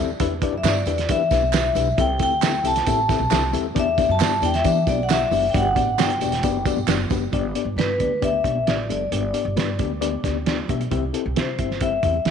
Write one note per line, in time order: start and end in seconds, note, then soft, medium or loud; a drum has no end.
0.00 0.17 D#2 medium
0.00 0.10 E4 medium
0.00 0.10 G4 medium
0.00 0.10 A4 medium
0.00 0.17 D5 medium
0.00 0.10 E5 medium
0.20 0.48 E2 loud
0.20 0.32 D4 loud
0.20 0.32 E4 loud
0.20 0.32 G4 loud
0.20 0.32 B4 loud
0.20 0.32 E5 loud
0.20 kick loud
0.20 closed hi-hat loud
0.20 tambourine soft
0.41 0.54 D4 medium
0.41 0.54 E4 medium
0.41 0.54 G4 medium
0.41 0.54 B4 medium
0.41 0.54 D5 loud
0.41 kick medium
0.41 closed hi-hat medium
0.41 muted conga soft
0.52 0.62 F#2 medium
0.58 0.64 E5 medium
0.63 0.83 G2 medium
0.63 0.76 D4 medium
0.63 0.76 E4 medium
0.63 0.76 G4 medium
0.63 0.77 B4 medium
0.63 0.77 E5 medium
0.63 snare loud
0.63 clap loud
0.63 closed hi-hat medium
0.63 tambourine loud
0.63 high conga medium
0.67 1.12 D5 medium
0.86 1.05 E2 medium
0.86 0.99 D4 medium
0.86 0.99 E4 medium
0.86 0.99 G4 medium
0.86 0.99 B4 medium
0.86 0.99 E5 medium
0.86 closed hi-hat medium
0.86 tambourine medium
0.86 low conga medium
0.98 snare soft
0.98 closed hi-hat medium
1.09 1.28 E3 loud
1.09 1.21 D4 loud
1.09 1.21 E4 medium
1.09 1.21 G4 medium
1.09 1.22 B4 medium
1.09 1.22 E5 loud
1.09 2.02 E5 medium
1.09 kick medium
1.09 closed hi-hat loud
1.09 tambourine medium
1.09 high conga medium
1.31 1.69 B1 loud
1.31 1.43 D4 medium
1.31 1.43 E4 medium
1.31 1.43 G4 medium
1.31 1.43 B4 medium
1.31 1.44 E5 medium
1.31 kick loud
1.31 snare soft
1.31 closed hi-hat medium
1.31 tambourine medium
1.31 muted conga soft
1.42 high conga medium
1.53 1.65 D4 medium
1.53 1.65 E4 medium
1.53 1.65 G4 medium
1.53 1.66 B4 medium
1.53 1.66 E5 medium
1.53 snare loud
1.53 clap medium
1.53 closed hi-hat medium
1.53 tambourine loud
1.53 muted conga soft
1.75 1.94 B1 medium
1.75 1.87 D4 medium
1.75 1.88 E4 medium
1.75 1.88 G4 medium
1.75 1.88 B4 medium
1.75 1.88 E5 loud
1.75 closed hi-hat medium
1.75 tambourine medium
1.75 low conga medium
1.98 2.17 C2 loud
1.98 2.10 C4 loud
1.98 2.10 E4 medium
1.98 2.10 G4 medium
1.98 2.10 A4 medium
1.98 2.10 E5 loud
1.98 2.22 G5 loud
1.98 kick loud
1.98 closed hi-hat loud
1.98 muted conga soft
2.19 2.58 D2 medium
2.19 2.32 C4 medium
2.19 2.32 E4 medium
2.19 2.32 G4 medium
2.19 2.32 A4 medium
2.19 2.32 E5 medium
2.19 2.67 G5 loud
2.19 kick medium
2.19 closed hi-hat medium
2.19 tambourine soft
2.42 2.54 C4 medium
2.42 2.55 E4 medium
2.42 2.54 G4 medium
2.42 2.55 A4 medium
2.42 2.55 E5 medium
2.42 snare loud
2.42 clap loud
2.42 closed hi-hat medium
2.42 tambourine medium
2.42 muted conga soft
2.42 high conga medium
2.64 2.83 C2 medium
2.64 2.76 C4 medium
2.64 2.77 E4 medium
2.64 2.77 G4 medium
2.64 2.77 A4 medium
2.64 2.77 E5 medium
2.64 3.51 A5 loud
2.64 closed hi-hat medium
2.64 tambourine medium
2.64 low conga medium
2.76 snare soft
2.76 closed hi-hat medium
2.87 3.15 A1 medium
2.87 2.99 C4 loud
2.87 2.99 E4 medium
2.87 2.99 G4 medium
2.87 2.99 A4 medium
2.87 2.99 E5 loud
2.87 kick loud
2.87 closed hi-hat loud
2.87 tambourine medium
2.87 high conga medium
3.08 3.21 C4 medium
3.08 3.21 E4 medium
3.08 3.21 G4 medium
3.08 3.21 A4 medium
3.08 3.21 E5 medium
3.08 kick loud
3.08 snare soft
3.08 closed hi-hat medium
3.08 tambourine medium
3.19 3.29 B1 medium
3.19 high conga medium
3.31 3.50 C2 loud
3.31 3.43 C4 medium
3.31 3.43 E4 medium
3.31 3.43 G4 medium
3.31 3.43 A4 medium
3.31 3.43 E5 loud
3.31 snare loud
3.31 clap medium
3.31 closed hi-hat medium
3.31 tambourine medium
3.53 3.72 D#2 medium
3.53 3.65 C4 medium
3.53 3.65 E4 medium
3.53 3.65 G4 medium
3.53 3.66 A4 medium
3.53 3.66 E5 loud
3.53 closed hi-hat medium
3.53 tambourine medium
3.53 muted conga soft
3.53 low conga medium
3.75 4.04 E2 loud
3.75 3.87 B3 loud
3.75 3.87 D4 medium
3.75 3.88 E4 medium
3.75 3.88 G4 medium
3.75 3.88 D5 loud
3.75 kick loud
3.75 closed hi-hat medium
3.80 4.12 E5 loud
3.98 4.10 B3 medium
3.98 4.10 D4 medium
3.98 4.10 E4 medium
3.98 4.10 G4 medium
3.98 4.10 D5 medium
3.98 kick medium
3.98 closed hi-hat medium
3.98 tambourine soft
4.09 4.19 F#2 medium
4.09 4.45 A5 loud
4.20 4.39 G2 loud
4.20 4.33 B3 medium
4.20 4.33 D4 medium
4.20 4.33 E4 medium
4.20 4.33 G4 medium
4.20 4.33 D5 medium
4.20 snare loud
4.20 clap medium
4.20 closed hi-hat loud
4.20 tambourine medium
4.20 high conga medium
4.41 4.61 E2 medium
4.41 4.54 B3 medium
4.41 4.54 D4 medium
4.41 4.54 E4 medium
4.41 4.55 G4 medium
4.41 4.55 D5 medium
4.41 4.50 G5 loud
4.41 closed hi-hat medium
4.41 tambourine medium
4.41 muted conga soft
4.41 low conga medium
4.54 4.89 E5 loud
4.54 snare soft
4.54 closed hi-hat medium
4.64 4.84 E3 loud
4.64 4.77 B3 loud
4.64 4.77 D4 medium
4.64 4.77 E4 medium
4.64 4.77 G4 medium
4.64 4.77 D5 loud
4.64 kick loud
4.64 closed hi-hat medium
4.64 tambourine medium
4.64 high conga medium
4.87 5.25 B1 loud
4.87 4.99 B3 medium
4.87 4.99 D4 medium
4.87 4.99 E4 medium
4.87 4.99 G4 medium
4.87 4.99 D5 medium
4.87 5.03 D5 medium
4.87 kick loud
4.87 closed hi-hat medium
4.87 tambourine medium
4.98 high conga medium
5.03 5.10 F#5 medium
5.09 5.22 B3 medium
5.09 5.22 D4 medium
5.09 5.22 E4 medium
5.09 5.22 G4 medium
5.09 5.22 E5 medium
5.09 5.49 E5 medium
5.09 snare loud
5.09 clap medium
5.09 closed hi-hat medium
5.09 tambourine medium
5.31 5.50 F#1 medium
5.31 5.44 B3 medium
5.31 5.44 D4 medium
5.31 5.44 E4 medium
5.31 5.44 G4 medium
5.31 5.44 D5 medium
5.31 open hi-hat medium
5.31 tambourine medium
5.31 muted conga soft
5.31 low conga medium
5.50 5.66 B3 medium
5.50 5.66 D4 medium
5.50 5.56 G5 medium
5.50 muted conga soft
5.54 5.73 G1 loud
5.54 5.66 F#4 medium
5.54 5.66 G4 medium
5.54 5.66 D5 loud
5.54 5.96 F#5 loud
5.54 kick loud
5.54 closed hi-hat loud
5.54 tambourine soft
5.75 5.95 A1 medium
5.75 5.88 B3 medium
5.75 5.88 D4 medium
5.75 5.88 F#4 medium
5.75 5.88 G4 medium
5.75 5.88 D5 medium
5.75 kick loud
5.75 closed hi-hat medium
5.75 tambourine soft
5.75 muted conga soft
5.98 6.17 G1 medium
5.98 6.10 B3 medium
5.98 6.11 D4 medium
5.98 6.11 F#4 medium
5.98 6.11 G4 medium
5.98 6.11 D5 medium
5.98 6.62 G5 medium
5.98 snare loud
5.98 clap loud
5.98 closed hi-hat medium
5.98 tambourine medium
5.98 muted conga soft
5.98 high conga medium
6.10 closed hi-hat soft
6.21 6.44 E1 medium
6.21 6.33 B3 medium
6.21 6.33 D4 medium
6.21 6.33 F#4 medium
6.21 6.33 G4 medium
6.21 6.33 D5 medium
6.21 closed hi-hat medium
6.21 tambourine medium
6.21 muted conga soft
6.21 low conga medium
6.32 snare soft
6.32 closed hi-hat medium
6.43 6.72 F#1 loud
6.43 6.56 B3 loud
6.43 6.56 D4 medium
6.43 6.56 F#4 medium
6.43 6.56 G4 loud
6.43 6.56 D5 loud
6.43 kick medium
6.43 closed hi-hat medium
6.43 tambourine medium
6.43 high conga medium
6.66 6.78 B3 loud
6.66 6.78 D4 medium
6.66 6.78 F#4 medium
6.66 6.78 G4 medium
6.66 6.78 D5 loud
6.66 kick loud
6.66 closed hi-hat medium
6.66 tambourine medium
6.66 muted conga soft
6.76 6.86 G1 medium
6.76 high conga medium
6.87 7.07 F#1 loud
6.87 7.00 B3 medium
6.87 7.00 D4 medium
6.87 7.00 F#4 medium
6.87 7.00 G4 medium
6.87 7.00 D5 medium
6.87 snare loud
6.87 clap medium
6.87 closed hi-hat medium
6.87 tambourine medium
7.10 7.30 F#1 medium
7.10 7.23 B3 medium
7.10 7.23 D4 medium
7.10 7.23 F#4 medium
7.10 7.23 G4 medium
7.10 7.23 B4 medium
7.10 kick medium
7.10 closed hi-hat medium
7.10 tambourine medium
7.10 low conga medium
7.33 7.52 G1 medium
7.33 7.45 B3 loud
7.33 7.45 D4 medium
7.33 7.45 G4 medium
7.33 7.45 D5 loud
7.33 kick loud
7.33 closed hi-hat medium
7.33 muted conga soft
7.55 7.67 B3 medium
7.55 7.67 D4 medium
7.55 7.67 G4 medium
7.55 7.67 D5 medium
7.55 closed hi-hat medium
7.65 7.75 G1 medium
7.76 7.96 G2 medium
7.76 7.90 B3 medium
7.76 7.90 D4 medium
7.76 7.90 G4 medium
7.76 8.24 B4 medium
7.76 7.90 D5 medium
7.76 snare loud
7.76 closed hi-hat medium
7.76 high conga medium
8.00 8.38 D2 medium
8.00 8.12 B3 medium
8.00 8.12 D4 medium
8.00 8.12 G4 medium
8.00 8.12 D5 medium
8.00 kick medium
8.00 closed hi-hat medium
8.00 low conga medium
8.22 8.34 B3 medium
8.22 8.34 D4 medium
8.22 8.34 G4 medium
8.22 8.34 D5 loud
8.22 8.69 E5 medium
8.22 kick medium
8.22 closed hi-hat medium
8.22 high conga medium
8.22 low conga medium
8.44 8.63 B1 medium
8.44 8.56 B3 medium
8.44 8.57 D4 medium
8.44 8.57 G4 medium
8.44 8.57 D5 medium
8.44 kick medium
8.44 closed hi-hat medium
8.44 muted conga soft
8.55 high conga medium
8.67 8.86 A1 medium
8.67 8.79 B3 medium
8.67 8.79 D4 medium
8.67 8.79 G4 medium
8.67 8.79 D5 medium
8.67 8.78 D5 medium
8.67 snare loud
8.67 closed hi-hat medium
8.89 9.08 F#1 medium
8.89 9.01 B3 medium
8.89 9.02 D4 medium
8.89 9.01 G4 medium
8.89 9.02 A4 medium
8.89 9.76 D5 medium
8.89 closed hi-hat medium
8.89 low conga medium
9.11 9.31 G1 loud
9.11 9.24 B3 medium
9.11 9.24 D4 medium
9.11 9.24 G4 medium
9.11 9.24 D5 medium
9.11 closed hi-hat medium
9.33 9.46 B3 medium
9.33 9.46 D4 medium
9.33 9.46 G4 medium
9.33 9.46 D5 medium
9.33 closed hi-hat medium
9.33 muted conga soft
9.45 9.55 G1 medium
9.56 9.76 G2 loud
9.56 9.69 B3 medium
9.56 9.69 D4 medium
9.56 9.69 G4 medium
9.56 9.69 B4 medium
9.56 snare medium
9.56 closed hi-hat medium
9.56 high conga medium
9.79 10.17 D2 medium
9.79 9.91 B3 medium
9.79 9.91 D4 medium
9.79 9.91 G4 medium
9.79 9.91 D5 medium
9.79 kick medium
9.79 closed hi-hat medium
9.79 muted conga soft
9.79 low conga medium
10.01 10.13 B3 loud
10.01 10.13 D4 medium
10.01 10.13 G4 medium
10.01 10.13 D5 loud
10.01 closed hi-hat medium
10.01 muted conga soft
10.01 high conga medium
10.01 low conga medium
10.24 10.62 D2 medium
10.24 10.36 B3 medium
10.24 10.36 D4 medium
10.24 10.36 G4 medium
10.24 10.36 D5 loud
10.24 kick medium
10.24 snare soft
10.24 closed hi-hat medium
10.24 muted conga soft
10.35 high conga medium
10.46 10.59 B3 medium
10.46 10.59 D4 medium
10.46 10.59 G4 medium
10.46 10.59 D5 medium
10.46 snare loud
10.46 closed hi-hat medium
10.46 muted conga soft
10.68 10.88 B1 medium
10.68 10.81 B3 medium
10.68 10.81 D4 medium
10.68 10.81 G4 medium
10.68 10.81 E5 medium
10.68 kick medium
10.68 closed hi-hat medium
10.68 low conga medium
10.81 closed hi-hat soft
10.91 11.10 C2 loud
10.91 11.03 C4 loud
10.91 11.03 E4 medium
10.91 11.03 G4 loud
10.91 11.03 E5 loud
10.91 kick loud
10.91 closed hi-hat medium
11.13 11.25 C4 medium
11.13 11.25 E4 medium
11.13 11.26 G4 medium
11.13 11.26 A4 medium
11.13 closed hi-hat medium
11.26 11.35 C2 medium
11.36 11.55 C3 medium
11.36 11.48 C4 medium
11.36 11.48 E4 medium
11.36 11.48 G4 medium
11.36 11.79 C5 medium
11.36 11.48 E5 medium
11.36 snare loud
11.36 closed hi-hat medium
11.36 muted conga soft
11.36 high conga medium
11.59 11.96 G1 medium
11.59 11.71 C4 medium
11.59 11.71 E4 medium
11.59 11.71 G4 medium
11.59 11.71 E5 medium
11.59 kick medium
11.59 closed hi-hat medium
11.59 low conga medium
11.71 snare soft
11.81 11.93 C4 medium
11.81 11.93 E4 medium
11.81 11.93 G4 medium
11.81 11.93 E5 loud
11.81 12.28 E5 medium
11.81 kick medium
11.81 closed hi-hat medium
11.81 muted conga soft
11.81 high conga medium
11.81 low conga medium
12.03 12.22 E2 medium
12.03 12.16 C4 medium
12.03 12.16 E4 medium
12.03 12.16 G4 medium
12.03 12.16 E5 medium
12.03 kick medium
12.03 closed hi-hat medium
12.14 high conga medium
12.25 12.31 D2 medium
12.25 12.31 C4 medium
12.25 12.31 E4 medium
12.25 12.31 G4 medium
12.25 12.31 E5 medium
12.25 snare loud
12.25 closed hi-hat medium